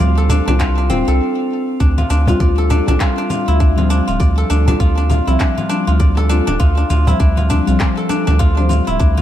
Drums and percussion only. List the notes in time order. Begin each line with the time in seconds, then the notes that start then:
0.00 low conga, shaker
0.18 shaker
0.29 cajon bass, shaker
0.48 cajon slap, low conga, shaker
0.60 kick, clap, shaker
0.78 shaker
0.90 cajon slap, low conga, shaker
1.08 shaker
1.80 kick, shaker
1.98 low conga, shaker
2.10 shaker
2.27 cajon bass, shaker
2.40 kick, low conga, shaker
2.58 shaker
2.70 cajon bass, cajon slap, shaker
2.88 low conga, shaker
3.00 kick, clap, shaker
3.18 shaker
3.30 cajon slap, low conga, shaker
3.48 shaker
3.60 kick, shaker
3.78 low conga, shaker
3.90 shaker
4.08 shaker
4.20 kick, low conga, shaker
4.38 shaker
4.50 shaker
4.68 cajon bass, low conga, shaker
4.80 kick, shaker
4.98 shaker
5.10 cajon bass, low conga, shaker
5.28 cajon slap, shaker
5.40 kick, clap, shaker
5.58 low conga, shaker
5.70 shaker
5.88 shaker
6.00 kick, low conga, shaker
6.17 cajon slap, shaker
6.30 shaker
6.48 low conga, shaker
6.60 kick, shaker
6.78 shaker
6.90 low conga, shaker
7.07 cajon bass, shaker
7.20 kick, shaker
7.38 low conga, shaker
7.50 cajon bass, cajon slap, shaker
7.68 shaker
7.80 kick, clap, low conga, shaker
7.98 shaker
8.10 cajon slap, shaker
8.28 low conga, shaker
8.40 kick, shaker
8.58 shaker
8.70 low conga, shaker
8.88 shaker
9.00 kick, shaker
9.18 low conga, shaker